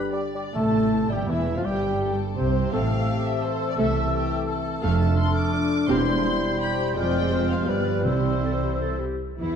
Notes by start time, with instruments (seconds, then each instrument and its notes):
Already playing: french horn section D3 G4, clarinet B4, violin section B5
0.13 bassoon G3, violin section D5, cor anglais D5, flute section G5
0.34 bassoon G3, cor anglais D5, flute section G5
0.55 double bass section A1, cello section A2, timpani C3, bassoon A3, viola section A3, french horn section A3, cor anglais A4, clarinet A4, flute section A5, violin section A5
0.93 violin section E4
1.10 double bass section G1, cello section G2, bassoon G3, french horn section G3, viola section G3, cor anglais G4, clarinet G4, flute section G5, violin section G5
1.28 double bass section E1, cello section E2, bassoon E3, viola section E3, french horn section E3, cor anglais E4, clarinet E4, flute section E5, violin section E5
1.55 cello section F2, viola section F3, bassoon F3, french horn section F3, cor anglais F4, clarinet F4, flute section F5, violin section F5
1.64 double bass section G1, cello section G2, bassoon G3, french horn section G3, viola section G3, cor anglais G4, violin section G4 G5, clarinet G4, flute section G5
2.01 violin section A4
2.36 double bass section C2, cello section C2, french horn section C3, bassoon C3, viola section C3, cor anglais C4, clarinet C4, violin section G4 C5, flute section C5
2.72 double bass section A1, cello section A2, french horn section E3 C5, bassoon A3, viola section C4 A4, clarinet C4, cor anglais A4, violin section F5, flute section E6
3.27 violin section E5
3.44 violin section A4 C5
3.71 violin section D5
3.78 double bass section C2, cello section C3, viola section A3 A4, violin section A4 E5, french horn section A4
4.14 violin section G4
4.48 violin section A4
4.82 double bass section F1, cello section F2, french horn section F3, viola section A3 A4, bassoon A3, clarinet D4, cor anglais A4, violin section F5, flute section F6
5.00 violin section A5
5.17 violin section C6
5.35 violin section D6
5.54 violin section D4
5.88 double bass section E1, cello section E2, french horn section G3 C5, bassoon G3, viola section C4 G4, clarinet E4, cor anglais C5, violin section C6, flute section G6
6.25 violin section E4
6.59 violin section G4 B5
6.94 double bass section F1, cello section F2, french horn section G#3, bassoon G#3, viola section C4 G#4, clarinet F4, violin section D5 G5, flute section F6
7.31 viola section G4, violin section C5
7.50 violin section F5
7.66 double bass section G1, cello section G2, french horn section F3 B4, bassoon G3, viola section B3 F4, clarinet G4, violin section B4 D5, cor anglais B4
8.05 double bass section C2, cello section C3, timpani C3, french horn section E3 C5, viola section C4 E4, violin section E4 C5, cor anglais C5, flute section E6
8.44 clarinet A4
8.63 clarinet G4
8.81 clarinet A4
8.99 clarinet G4
9.39 double bass section E2, cello section E3, clarinet E4, viola section E4, violin section E4